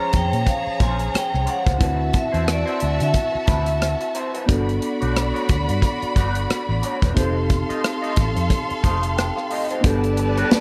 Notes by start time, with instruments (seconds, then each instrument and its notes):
Already playing: tine electric piano F3 C#4 G#4 C5, violin section G#4 C#5 A#5, vibraphone A#5
0.00 clean electric guitar G#3 C#4 F4 C#5
0.13 fingered electric bass F2, vibraphone G5, muted clean electric guitar stroke, kick, closed hi-hat
0.33 fingered electric bass A#2, muted clean electric guitar stroke, closed hi-hat
0.46 vibraphone F5, muted clean electric guitar stroke, kick, closed hi-hat
0.67 muted fingered electric bass stroke
0.79 fingered electric bass A#1, clean electric guitar G#3 C#4 F4 C5, vibraphone G#5, kick, closed hi-hat
0.99 muted clean electric guitar stroke, closed hi-hat
1.13 vibraphone G5, muted clean electric guitar stroke, muted fingered electric bass stroke, cross-stick, closed hi-hat
1.33 fingered electric bass C2, muted clean electric guitar stroke, cross-stick
1.46 clean electric guitar G#3 C#4 F4 C#5, vibraphone F#5, closed hi-hat
1.65 fingered electric bass C#2, clean electric guitar G#3 C#4 F4 C5, kick, closed hi-hat
1.78 fingered electric bass D2, clean electric guitar F#3 C4 E4 B4, tine electric piano C4 E4 F#4, violin section F#4 E5 A5, kick, closed hi-hat
1.83 tine electric piano B4
2.13 muted clean electric guitar stroke, kick, closed hi-hat
2.18 vibraphone E5
2.32 fingered electric bass E2, clean electric guitar F#3 C4 E4 C5, closed hi-hat
2.45 muted clean electric guitar stroke, cross-stick, closed hi-hat
2.52 vibraphone D5
2.66 clean electric guitar F#3 C4 E4 C5, closed hi-hat
2.80 fingered electric bass D2, muted clean electric guitar stroke, closed hi-hat
2.99 fingered electric bass D3, muted clean electric guitar stroke, closed hi-hat
3.03 vibraphone E5
3.13 muted clean electric guitar stroke, kick, closed hi-hat
3.32 muted clean electric guitar stroke, muted fingered electric bass stroke
3.46 fingered electric bass D2, clean electric guitar F#3 C4 E4 B4, kick, closed hi-hat
3.66 muted clean electric guitar stroke, closed hi-hat
3.81 muted clean electric guitar stroke, cross-stick, closed hi-hat
4.01 muted clean electric guitar stroke, closed hi-hat
4.15 clean electric guitar F#3 C4 E4 C5, closed hi-hat
4.34 clean electric guitar F#3 C4 E4 B4, closed hi-hat
4.46 fingered electric bass G1, clean electric guitar A3 D4 F#4 B4, tine electric piano B3 D4 F#4, violin section F#4 D5 B5, kick, closed hi-hat
4.51 tine electric piano A4
4.69 closed hi-hat
4.81 muted clean electric guitar stroke, closed hi-hat
5.01 fingered electric bass B1, clean electric guitar A3 D4 F#4 C#5, closed hi-hat
5.15 muted clean electric guitar stroke, cross-stick, closed hi-hat
5.34 clean electric guitar A3 D4 F#4 C#5, closed hi-hat
5.49 fingered electric bass D2, muted clean electric guitar stroke, kick, closed hi-hat
5.68 fingered electric bass G2, muted clean electric guitar stroke, closed hi-hat
5.82 muted clean electric guitar stroke, kick, closed hi-hat
6.02 muted clean electric guitar stroke, muted fingered electric bass stroke, closed hi-hat
6.16 fingered electric bass G1, clean electric guitar A3 D4 F#4 B4, kick, closed hi-hat
6.35 muted clean electric guitar stroke, closed hi-hat
6.50 muted fingered electric bass stroke, muted clean electric guitar stroke, cross-stick, closed hi-hat
6.68 fingered electric bass A1, muted clean electric guitar stroke
6.82 clean electric guitar A3 D4 F#4 C#5, closed hi-hat
7.02 fingered electric bass E1, clean electric guitar A3 D4 F#4 B4, kick, closed hi-hat
7.14 fingered electric bass F1, clean electric guitar A3 D#4 F4 C5, tine electric piano C4 D#4 G4, violin section A4 F5 C6, kick, closed hi-hat
7.19 tine electric piano A4
7.49 muted clean electric guitar stroke, kick, closed hi-hat
7.69 clean electric guitar A3 D#4 F4 D#5, muted fingered electric bass stroke, closed hi-hat
7.84 cross-stick, closed hi-hat
8.02 clean electric guitar A3 D#4 F4 D#5, closed hi-hat
8.16 fingered electric bass A1, muted clean electric guitar stroke, kick, closed hi-hat
8.36 fingered electric bass F2, muted clean electric guitar stroke, closed hi-hat
8.50 muted clean electric guitar stroke, kick, closed hi-hat
8.69 muted clean electric guitar stroke, muted fingered electric bass stroke, closed hi-hat
8.83 fingered electric bass F1, clean electric guitar A3 D#4 F4 C5, tine electric piano C6, kick, closed hi-hat
9.03 tine electric piano A5, muted clean electric guitar stroke, closed hi-hat
9.17 tine electric piano G5, muted clean electric guitar stroke, cross-stick, closed hi-hat
9.36 tine electric piano F5, muted clean electric guitar stroke, cross-stick
9.50 clean electric guitar A3 D#4 F4 D#5, tine electric piano F5, open hi-hat
9.70 clean electric guitar A3 D#4 F4 C5, closed hi-hat
9.81 fingered electric bass G1, string section G3 D4 A4 B4, tine electric piano B3 D4 G4, clean electric guitar B3 D4 F#4, kick, closed hi-hat
9.86 violin section G4 D5 A5, tine electric piano A4, clean electric guitar B4
10.04 muted clean electric guitar stroke, closed hi-hat
10.17 muted clean electric guitar stroke, closed hi-hat
10.37 clean electric guitar B3 D4 F#4 C#5, closed hi-hat
10.51 vibraphone D5, muted fingered electric bass stroke, snare, closed hi-hat